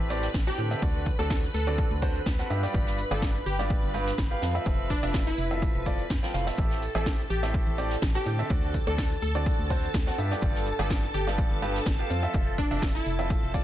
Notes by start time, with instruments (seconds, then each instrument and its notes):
Already playing: string machine B4 B5
0.00 fm bass A1
0.10 grand piano A2 C4 G4 A4 D5, open hi-hat, tambourine, shaker
0.23 snare, closed hi-hat, shaker
0.34 fm bass A1, kick, snare, closed hi-hat, tambourine, shaker
0.47 grand piano A2 C4 G4 A4 A5, digital synth lead G4, closed hi-hat
0.58 fm bass A2, grand piano D3 C4 G4 A4 G5, open hi-hat, tambourine, shaker
0.71 grand piano D3 C4 G4 A4 E5, closed hi-hat, shaker
0.82 fm bass D2, grand piano D3 C4 F#4 D5, kick, closed hi-hat, tambourine, shaker
0.95 closed hi-hat
1.06 kick, open hi-hat, tambourine, shaker
1.19 fm bass D2, grand piano D3 C4 F#4 A4 D5, digital synth lead A4, closed hi-hat, shaker
1.30 digital synth lead A4, kick, snare, closed hi-hat, tambourine, shaker
1.43 closed hi-hat
1.54 fm bass D2, digital synth lead A4, open hi-hat, tambourine, shaker
1.67 grand piano D3 C4 F#4 A4 D5, closed hi-hat, shaker
1.78 kick, closed hi-hat, tambourine, shaker
1.91 fm bass D2, closed hi-hat
2.02 grand piano D3 C4 F#4 A4 C5, kick, open hi-hat, tambourine, shaker
2.15 closed hi-hat, shaker
2.26 fm bass D2, kick, snare, closed hi-hat, tambourine, shaker
2.38 grand piano C4 F#4 A4 F#5, snare, closed hi-hat
2.50 fm bass G2, grand piano G2 B3 F4 G4 E5, open hi-hat, tambourine, shaker
2.63 grand piano G2 B3 F4 G4 D5, snare, closed hi-hat, shaker
2.74 fm bass G1, grand piano G2 B3 F4 G4, kick, closed hi-hat, tambourine, shaker
2.86 snare, closed hi-hat
2.98 open hi-hat, tambourine, shaker
3.11 fm bass G1, grand piano G2 B3 F4 G4 D5, digital synth lead A4, closed hi-hat, shaker
3.22 kick, snare, closed hi-hat, tambourine, shaker
3.35 closed hi-hat
3.46 fm bass G1, digital synth lead G4, open hi-hat, tambourine, shaker
3.59 grand piano G2 B3 F4 G4 D5, snare, closed hi-hat, shaker
3.70 kick, closed hi-hat, tambourine, shaker
3.83 fm bass G1, closed hi-hat
3.94 grand piano G2 B3 F4 G4 B4, open hi-hat, tambourine, shaker
4.07 snare, closed hi-hat, shaker
4.18 fm bass G1, kick, snare, closed hi-hat, tambourine, shaker
4.31 grand piano B3 F4 G4 F5, closed hi-hat
4.42 fm bass F2, grand piano F3 C4 F4 A4 F5, snare, open hi-hat, tambourine, shaker
4.55 grand piano F3 C4 F4 A4 E5, closed hi-hat, shaker
4.66 fm bass F1, grand piano F3 C4 F4 A4 E5, kick, closed hi-hat, tambourine, shaker
4.79 closed hi-hat
4.90 digital synth lead D4, kick, open hi-hat, tambourine, shaker
5.03 fm bass F1, grand piano F3 C4 F4 A4 E5, digital synth lead D4, closed hi-hat, shaker
5.14 kick, snare, closed hi-hat, tambourine, shaker
5.27 digital synth lead E4, closed hi-hat
5.38 fm bass F1, open hi-hat, tambourine, shaker
5.51 grand piano F3 C4 F4 A4 E5, closed hi-hat, shaker
5.62 kick, closed hi-hat, tambourine, shaker
5.75 fm bass F1, closed hi-hat
5.86 grand piano F3 C4 F4 A4 D5, kick, open hi-hat, tambourine, shaker
5.99 closed hi-hat, shaker
6.10 fm bass F2, kick, snare, closed hi-hat, tambourine, shaker
6.23 grand piano F3 C4 F4 A4 G5, snare, closed hi-hat, tambourine
6.34 fm bass F1, grand piano A2 C4 F4 A4 F5, snare, open hi-hat, tambourine, shaker
6.47 grand piano A2 C4 F4 A4 E5, snare, closed hi-hat, tambourine, shaker
6.57 fm bass A1, grand piano A2 C4 G4 A4 E5, string machine A4 A5, kick, closed hi-hat, tambourine, shaker
6.71 snare, closed hi-hat
6.82 open hi-hat, tambourine, shaker
6.95 fm bass A1, grand piano A2 C4 G4 A4 E5, digital synth lead A4, closed hi-hat, shaker
7.06 kick, snare, closed hi-hat, tambourine, shaker
7.19 closed hi-hat
7.30 fm bass A1, digital synth lead G4, open hi-hat, tambourine, shaker
7.43 grand piano A2 C4 G4 A4 E5, snare, closed hi-hat, shaker
7.54 kick, closed hi-hat, tambourine, shaker
7.67 fm bass A1, closed hi-hat
7.78 grand piano A2 C4 G4 A4 D5, open hi-hat, tambourine, shaker
7.91 snare, closed hi-hat, shaker
8.02 fm bass A1, kick, snare, closed hi-hat, tambourine, shaker
8.15 grand piano A2 C4 G4 A4 A5, digital synth lead G4, closed hi-hat
8.26 fm bass A2, grand piano D3 C4 G4 A4 G5, open hi-hat, tambourine, shaker
8.39 grand piano D3 C4 G4 A4 E5, closed hi-hat, shaker
8.50 fm bass D2, grand piano D3 F#4 A4 D5, kick, closed hi-hat, tambourine, shaker
8.63 closed hi-hat
8.74 kick, open hi-hat, tambourine, shaker
8.87 fm bass D2, grand piano D3 C4 F#4 A4 D5, digital synth lead A4, closed hi-hat, shaker
8.98 digital synth lead A4, kick, snare, closed hi-hat, tambourine, shaker
9.11 closed hi-hat
9.22 fm bass D2, digital synth lead A4, open hi-hat, tambourine, shaker
9.35 grand piano D3 C4 F#4 A4 D5, closed hi-hat, shaker
9.46 kick, closed hi-hat, tambourine, shaker
9.59 fm bass D2, closed hi-hat
9.70 grand piano D3 C4 F#4 A4 C5, kick, open hi-hat, tambourine, shaker
9.83 closed hi-hat, shaker
9.94 fm bass D2, kick, snare, closed hi-hat, tambourine, shaker
10.07 grand piano C4 F#4 A4 F#5, snare, closed hi-hat
10.18 fm bass G2, grand piano G2 B3 F4 G4 E5, open hi-hat, tambourine, shaker
10.31 grand piano G2 B3 F4 G4 D5, snare, closed hi-hat, shaker
10.42 fm bass G1, grand piano G2 B3 F4 G4 D5, kick, closed hi-hat, tambourine, shaker
10.55 snare, closed hi-hat
10.66 open hi-hat, tambourine, shaker
10.79 fm bass G1, grand piano G2 B3 F4 G4 D5, digital synth lead A4, closed hi-hat, shaker
10.90 kick, snare, closed hi-hat, tambourine, shaker
11.03 closed hi-hat
11.14 fm bass G1, digital synth lead G4, open hi-hat, tambourine, shaker
11.27 grand piano G2 B3 F4 G4 D5, snare, closed hi-hat, shaker
11.38 kick, closed hi-hat, tambourine, shaker
11.51 fm bass G1, closed hi-hat
11.62 grand piano G2 B3 F4 G4 B4, open hi-hat, tambourine, shaker
11.75 snare, closed hi-hat, shaker
11.86 fm bass G1, kick, snare, closed hi-hat, tambourine, shaker
11.99 grand piano B3 F4 G4 F5, closed hi-hat
12.09 fm bass F2, grand piano F3 C4 F4 A4 F5, open hi-hat, tambourine, shaker
12.23 grand piano F3 C4 F4 A4 E5, closed hi-hat, shaker
12.34 fm bass F1, grand piano F3 C4 F4 A4 E5, kick, closed hi-hat, tambourine, shaker
12.47 closed hi-hat
12.58 digital synth lead D4, kick, open hi-hat, tambourine, shaker
12.71 fm bass F1, grand piano F3 C4 F4 A4 E5, digital synth lead D4, closed hi-hat, shaker
12.82 kick, snare, closed hi-hat, tambourine, shaker
12.95 digital synth lead E4, closed hi-hat
13.06 fm bass F1, open hi-hat, tambourine, shaker
13.19 grand piano F3 C4 F4 A4 E5, closed hi-hat, shaker
13.30 kick, closed hi-hat, tambourine, shaker
13.43 fm bass F1, closed hi-hat
13.54 grand piano F3 C4 F4 A4 D5, kick, open hi-hat, tambourine, shaker